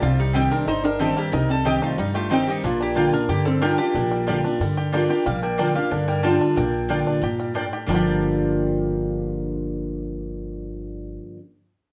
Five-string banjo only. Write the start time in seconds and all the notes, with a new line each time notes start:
Already playing: G4
0.03 G3
0.35 G3
0.51 C4
0.68 D#4
0.85 G3
1.00 C4
1.17 G3
1.33 D#4
1.50 G3
1.66 G4
1.82 D#4
1.98 G3
2.15 G4
2.32 D#4
2.48 G4
2.64 D4
2.80 D4
2.96 D4
3.13 D4
3.29 G4
3.46 G3
3.62 G4
3.79 D4
3.95 D4
4.11 G3
4.28 G4
4.44 D4
4.61 G3
4.77 G4
4.94 D4
5.10 G4
5.26 G3
5.42 D4
5.59 D4
5.75 G4
5.92 D4
6.09 G3
6.25 D3
6.41 D4
6.57 D4
6.90 D4
7.07 D4
7.23 G4
7.40 G3
7.56 D4
7.73 G4
7.89 G3 A#3 D4
7.95 G4